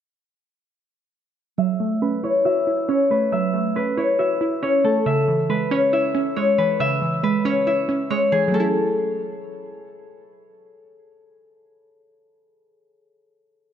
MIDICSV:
0, 0, Header, 1, 3, 480
1, 0, Start_track
1, 0, Key_signature, 3, "minor"
1, 0, Tempo, 434783
1, 1748, Time_signature, 4, 2, 24, 8
1, 15161, End_track
2, 0, Start_track
2, 0, Title_t, "Harp"
2, 0, Program_c, 0, 46
2, 1747, Note_on_c, 0, 76, 94
2, 2227, Note_on_c, 0, 71, 67
2, 2469, Note_on_c, 0, 73, 84
2, 2702, Note_off_c, 0, 76, 0
2, 2706, Note_on_c, 0, 76, 89
2, 3181, Note_off_c, 0, 73, 0
2, 3185, Note_on_c, 0, 73, 72
2, 3425, Note_off_c, 0, 71, 0
2, 3430, Note_on_c, 0, 71, 66
2, 3665, Note_off_c, 0, 76, 0
2, 3669, Note_on_c, 0, 76, 99
2, 4145, Note_off_c, 0, 71, 0
2, 4149, Note_on_c, 0, 71, 77
2, 4383, Note_off_c, 0, 73, 0
2, 4388, Note_on_c, 0, 73, 61
2, 4620, Note_off_c, 0, 76, 0
2, 4625, Note_on_c, 0, 76, 76
2, 5102, Note_off_c, 0, 73, 0
2, 5106, Note_on_c, 0, 73, 79
2, 5348, Note_on_c, 0, 69, 81
2, 5583, Note_off_c, 0, 76, 0
2, 5588, Note_on_c, 0, 76, 96
2, 6063, Note_off_c, 0, 71, 0
2, 6067, Note_on_c, 0, 71, 74
2, 6302, Note_off_c, 0, 73, 0
2, 6307, Note_on_c, 0, 73, 77
2, 6541, Note_off_c, 0, 76, 0
2, 6546, Note_on_c, 0, 76, 88
2, 7021, Note_off_c, 0, 73, 0
2, 7025, Note_on_c, 0, 73, 79
2, 7262, Note_off_c, 0, 71, 0
2, 7267, Note_on_c, 0, 71, 77
2, 7505, Note_off_c, 0, 76, 0
2, 7509, Note_on_c, 0, 76, 111
2, 7772, Note_off_c, 0, 69, 0
2, 7983, Note_off_c, 0, 71, 0
2, 7988, Note_on_c, 0, 71, 81
2, 8223, Note_off_c, 0, 73, 0
2, 8227, Note_on_c, 0, 73, 67
2, 8462, Note_off_c, 0, 76, 0
2, 8466, Note_on_c, 0, 76, 72
2, 8943, Note_off_c, 0, 73, 0
2, 8947, Note_on_c, 0, 73, 77
2, 9186, Note_on_c, 0, 68, 82
2, 9427, Note_on_c, 0, 69, 82
2, 9493, Note_off_c, 0, 68, 0
2, 10250, Note_off_c, 0, 71, 0
2, 10369, Note_off_c, 0, 76, 0
2, 11058, Note_off_c, 0, 73, 0
2, 11852, Note_off_c, 0, 69, 0
2, 15161, End_track
3, 0, Start_track
3, 0, Title_t, "Synth pluck"
3, 0, Program_c, 1, 84
3, 1746, Note_on_c, 1, 54, 84
3, 1988, Note_on_c, 1, 57, 78
3, 2229, Note_on_c, 1, 61, 73
3, 2468, Note_on_c, 1, 64, 88
3, 2707, Note_on_c, 1, 66, 85
3, 2935, Note_off_c, 1, 64, 0
3, 2947, Note_off_c, 1, 54, 0
3, 2948, Note_on_c, 1, 64, 83
3, 3173, Note_off_c, 1, 61, 0
3, 3186, Note_on_c, 1, 61, 88
3, 3188, Note_off_c, 1, 57, 0
3, 3428, Note_on_c, 1, 57, 72
3, 3668, Note_on_c, 1, 54, 82
3, 3893, Note_off_c, 1, 57, 0
3, 3906, Note_on_c, 1, 57, 74
3, 3907, Note_off_c, 1, 66, 0
3, 4133, Note_off_c, 1, 61, 0
3, 4147, Note_on_c, 1, 61, 77
3, 4148, Note_off_c, 1, 64, 0
3, 4387, Note_on_c, 1, 64, 97
3, 4626, Note_on_c, 1, 66, 79
3, 4855, Note_off_c, 1, 64, 0
3, 4868, Note_off_c, 1, 54, 0
3, 4868, Note_on_c, 1, 64, 81
3, 5094, Note_off_c, 1, 61, 0
3, 5107, Note_off_c, 1, 57, 0
3, 5107, Note_on_c, 1, 61, 93
3, 5348, Note_on_c, 1, 57, 74
3, 5586, Note_off_c, 1, 66, 0
3, 5587, Note_off_c, 1, 61, 0
3, 5587, Note_on_c, 1, 49, 91
3, 5588, Note_off_c, 1, 57, 0
3, 5588, Note_off_c, 1, 64, 0
3, 5828, Note_on_c, 1, 52, 78
3, 6067, Note_on_c, 1, 56, 78
3, 6306, Note_on_c, 1, 61, 104
3, 6547, Note_on_c, 1, 64, 85
3, 6773, Note_off_c, 1, 61, 0
3, 6786, Note_on_c, 1, 61, 79
3, 6787, Note_off_c, 1, 49, 0
3, 7013, Note_off_c, 1, 56, 0
3, 7027, Note_on_c, 1, 56, 96
3, 7028, Note_off_c, 1, 52, 0
3, 7267, Note_on_c, 1, 52, 83
3, 7506, Note_on_c, 1, 49, 90
3, 7734, Note_off_c, 1, 52, 0
3, 7747, Note_off_c, 1, 64, 0
3, 7747, Note_on_c, 1, 52, 76
3, 7974, Note_off_c, 1, 56, 0
3, 7987, Note_off_c, 1, 61, 0
3, 7987, Note_on_c, 1, 56, 83
3, 8226, Note_on_c, 1, 61, 101
3, 8467, Note_on_c, 1, 64, 83
3, 8694, Note_off_c, 1, 61, 0
3, 8707, Note_off_c, 1, 49, 0
3, 8707, Note_on_c, 1, 61, 78
3, 8935, Note_off_c, 1, 56, 0
3, 8947, Note_off_c, 1, 52, 0
3, 8948, Note_on_c, 1, 56, 96
3, 9186, Note_on_c, 1, 52, 78
3, 9360, Note_on_c, 1, 54, 80
3, 9404, Note_on_c, 1, 57, 73
3, 9427, Note_off_c, 1, 52, 0
3, 9427, Note_off_c, 1, 61, 0
3, 9427, Note_off_c, 1, 64, 0
3, 9428, Note_off_c, 1, 56, 0
3, 9448, Note_on_c, 1, 61, 74
3, 9493, Note_on_c, 1, 64, 89
3, 12952, Note_off_c, 1, 54, 0
3, 12996, Note_off_c, 1, 57, 0
3, 13040, Note_off_c, 1, 61, 0
3, 13084, Note_off_c, 1, 64, 0
3, 15161, End_track
0, 0, End_of_file